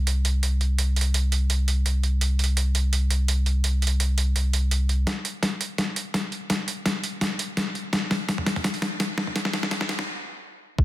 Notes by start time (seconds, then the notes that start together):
Already playing: C2
0.07 closed hi-hat
0.25 closed hi-hat
0.43 closed hi-hat
0.61 closed hi-hat
0.78 closed hi-hat
0.96 closed hi-hat
1.01 closed hi-hat
1.14 closed hi-hat
1.32 closed hi-hat
1.50 closed hi-hat
1.68 closed hi-hat
1.86 closed hi-hat
2.03 closed hi-hat
2.21 closed hi-hat
2.39 closed hi-hat
2.44 closed hi-hat
2.57 closed hi-hat
2.75 closed hi-hat
2.93 closed hi-hat
3.10 closed hi-hat
3.28 closed hi-hat
3.46 closed hi-hat
3.64 closed hi-hat
3.82 closed hi-hat
3.87 closed hi-hat
4.00 closed hi-hat
4.18 closed hi-hat
4.36 closed hi-hat
4.53 closed hi-hat
4.71 closed hi-hat
4.89 closed hi-hat
5.07 kick, snare, closed hi-hat
5.25 closed hi-hat
5.43 kick, snare, closed hi-hat
5.61 closed hi-hat
5.78 kick, snare, closed hi-hat
5.96 closed hi-hat
6.14 kick, snare, closed hi-hat
6.32 closed hi-hat
6.50 kick, snare, closed hi-hat
6.68 closed hi-hat
6.86 kick, snare, closed hi-hat
7.04 closed hi-hat
7.21 kick, snare, closed hi-hat
7.39 closed hi-hat
7.57 kick, snare, closed hi-hat
7.75 closed hi-hat
7.93 kick, snare, closed hi-hat
8.11 snare, open hi-hat
8.29 kick, snare, closed hi-hat
8.38 mid tom
8.46 snare, closed hi-hat
8.56 mid tom, open hi-hat
8.64 kick, snare, closed hi-hat
8.74 open hi-hat
8.82 snare, closed hi-hat
9.00 kick, snare, closed hi-hat
9.18 snare
9.27 mid tom
9.36 kick, snare, closed hi-hat
9.45 snare
9.53 snare, open hi-hat
9.63 snare
9.71 kick, snare, closed hi-hat
9.81 snare, mid tom
9.89 snare, closed hi-hat
9.99 snare, mid tom, open hi-hat
10.79 D2, kick